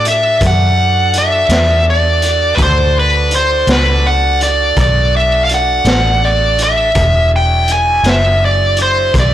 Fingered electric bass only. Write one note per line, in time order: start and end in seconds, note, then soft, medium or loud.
0.00 0.37 A2 medium
0.41 1.47 F#2 medium
1.49 2.55 E2 loud
2.57 3.64 D2 medium
3.67 4.73 C#2 medium
4.76 5.83 B1 medium
5.85 6.91 A1 medium
6.95 8.01 E1 medium
8.03 9.10 F#1 medium
9.14 9.34 B1 medium